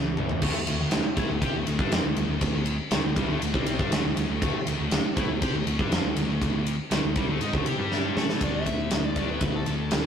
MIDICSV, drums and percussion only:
0, 0, Header, 1, 2, 480
1, 0, Start_track
1, 0, Tempo, 500000
1, 410, Time_signature, 4, 2, 24, 8
1, 9658, End_track
2, 0, Start_track
2, 0, Title_t, "Drums"
2, 164, Note_on_c, 9, 45, 81
2, 260, Note_off_c, 9, 45, 0
2, 282, Note_on_c, 9, 43, 80
2, 378, Note_off_c, 9, 43, 0
2, 400, Note_on_c, 9, 49, 112
2, 404, Note_on_c, 9, 36, 104
2, 496, Note_off_c, 9, 49, 0
2, 500, Note_off_c, 9, 36, 0
2, 642, Note_on_c, 9, 51, 80
2, 738, Note_off_c, 9, 51, 0
2, 874, Note_on_c, 9, 51, 96
2, 882, Note_on_c, 9, 38, 113
2, 970, Note_off_c, 9, 51, 0
2, 978, Note_off_c, 9, 38, 0
2, 1121, Note_on_c, 9, 51, 73
2, 1122, Note_on_c, 9, 36, 103
2, 1217, Note_off_c, 9, 51, 0
2, 1218, Note_off_c, 9, 36, 0
2, 1361, Note_on_c, 9, 36, 101
2, 1363, Note_on_c, 9, 51, 88
2, 1457, Note_off_c, 9, 36, 0
2, 1459, Note_off_c, 9, 51, 0
2, 1600, Note_on_c, 9, 51, 72
2, 1696, Note_off_c, 9, 51, 0
2, 1718, Note_on_c, 9, 36, 106
2, 1814, Note_off_c, 9, 36, 0
2, 1840, Note_on_c, 9, 51, 95
2, 1849, Note_on_c, 9, 38, 116
2, 1936, Note_off_c, 9, 51, 0
2, 1945, Note_off_c, 9, 38, 0
2, 2078, Note_on_c, 9, 51, 70
2, 2174, Note_off_c, 9, 51, 0
2, 2314, Note_on_c, 9, 51, 96
2, 2317, Note_on_c, 9, 36, 95
2, 2410, Note_off_c, 9, 51, 0
2, 2413, Note_off_c, 9, 36, 0
2, 2550, Note_on_c, 9, 51, 75
2, 2646, Note_off_c, 9, 51, 0
2, 2791, Note_on_c, 9, 51, 101
2, 2800, Note_on_c, 9, 38, 113
2, 2887, Note_off_c, 9, 51, 0
2, 2896, Note_off_c, 9, 38, 0
2, 3037, Note_on_c, 9, 36, 106
2, 3038, Note_on_c, 9, 51, 78
2, 3133, Note_off_c, 9, 36, 0
2, 3134, Note_off_c, 9, 51, 0
2, 3281, Note_on_c, 9, 51, 102
2, 3377, Note_off_c, 9, 51, 0
2, 3399, Note_on_c, 9, 36, 109
2, 3495, Note_off_c, 9, 36, 0
2, 3518, Note_on_c, 9, 51, 81
2, 3614, Note_off_c, 9, 51, 0
2, 3642, Note_on_c, 9, 36, 110
2, 3738, Note_off_c, 9, 36, 0
2, 3761, Note_on_c, 9, 51, 107
2, 3769, Note_on_c, 9, 38, 112
2, 3857, Note_off_c, 9, 51, 0
2, 3865, Note_off_c, 9, 38, 0
2, 4001, Note_on_c, 9, 51, 84
2, 4097, Note_off_c, 9, 51, 0
2, 4242, Note_on_c, 9, 36, 109
2, 4243, Note_on_c, 9, 51, 107
2, 4338, Note_off_c, 9, 36, 0
2, 4339, Note_off_c, 9, 51, 0
2, 4481, Note_on_c, 9, 51, 84
2, 4577, Note_off_c, 9, 51, 0
2, 4717, Note_on_c, 9, 51, 105
2, 4725, Note_on_c, 9, 38, 106
2, 4813, Note_off_c, 9, 51, 0
2, 4821, Note_off_c, 9, 38, 0
2, 4961, Note_on_c, 9, 36, 106
2, 4961, Note_on_c, 9, 51, 75
2, 5057, Note_off_c, 9, 36, 0
2, 5057, Note_off_c, 9, 51, 0
2, 5201, Note_on_c, 9, 51, 99
2, 5203, Note_on_c, 9, 36, 102
2, 5297, Note_off_c, 9, 51, 0
2, 5299, Note_off_c, 9, 36, 0
2, 5442, Note_on_c, 9, 51, 70
2, 5538, Note_off_c, 9, 51, 0
2, 5560, Note_on_c, 9, 36, 102
2, 5656, Note_off_c, 9, 36, 0
2, 5680, Note_on_c, 9, 51, 96
2, 5688, Note_on_c, 9, 38, 107
2, 5776, Note_off_c, 9, 51, 0
2, 5784, Note_off_c, 9, 38, 0
2, 5918, Note_on_c, 9, 51, 76
2, 6014, Note_off_c, 9, 51, 0
2, 6159, Note_on_c, 9, 36, 90
2, 6161, Note_on_c, 9, 51, 88
2, 6255, Note_off_c, 9, 36, 0
2, 6257, Note_off_c, 9, 51, 0
2, 6399, Note_on_c, 9, 51, 74
2, 6495, Note_off_c, 9, 51, 0
2, 6633, Note_on_c, 9, 51, 97
2, 6642, Note_on_c, 9, 38, 117
2, 6729, Note_off_c, 9, 51, 0
2, 6738, Note_off_c, 9, 38, 0
2, 6869, Note_on_c, 9, 51, 73
2, 6873, Note_on_c, 9, 36, 103
2, 6965, Note_off_c, 9, 51, 0
2, 6969, Note_off_c, 9, 36, 0
2, 7112, Note_on_c, 9, 51, 102
2, 7208, Note_off_c, 9, 51, 0
2, 7233, Note_on_c, 9, 36, 106
2, 7329, Note_off_c, 9, 36, 0
2, 7352, Note_on_c, 9, 51, 80
2, 7448, Note_off_c, 9, 51, 0
2, 7601, Note_on_c, 9, 38, 65
2, 7697, Note_off_c, 9, 38, 0
2, 7841, Note_on_c, 9, 38, 99
2, 7937, Note_off_c, 9, 38, 0
2, 7960, Note_on_c, 9, 38, 88
2, 8056, Note_off_c, 9, 38, 0
2, 8072, Note_on_c, 9, 51, 100
2, 8073, Note_on_c, 9, 36, 103
2, 8168, Note_off_c, 9, 51, 0
2, 8169, Note_off_c, 9, 36, 0
2, 8315, Note_on_c, 9, 36, 83
2, 8317, Note_on_c, 9, 51, 78
2, 8411, Note_off_c, 9, 36, 0
2, 8413, Note_off_c, 9, 51, 0
2, 8550, Note_on_c, 9, 51, 95
2, 8558, Note_on_c, 9, 38, 109
2, 8646, Note_off_c, 9, 51, 0
2, 8654, Note_off_c, 9, 38, 0
2, 8791, Note_on_c, 9, 51, 70
2, 8794, Note_on_c, 9, 36, 82
2, 8887, Note_off_c, 9, 51, 0
2, 8890, Note_off_c, 9, 36, 0
2, 9031, Note_on_c, 9, 51, 90
2, 9035, Note_on_c, 9, 36, 108
2, 9127, Note_off_c, 9, 51, 0
2, 9131, Note_off_c, 9, 36, 0
2, 9276, Note_on_c, 9, 51, 73
2, 9372, Note_off_c, 9, 51, 0
2, 9512, Note_on_c, 9, 51, 82
2, 9521, Note_on_c, 9, 38, 109
2, 9608, Note_off_c, 9, 51, 0
2, 9617, Note_off_c, 9, 38, 0
2, 9658, End_track
0, 0, End_of_file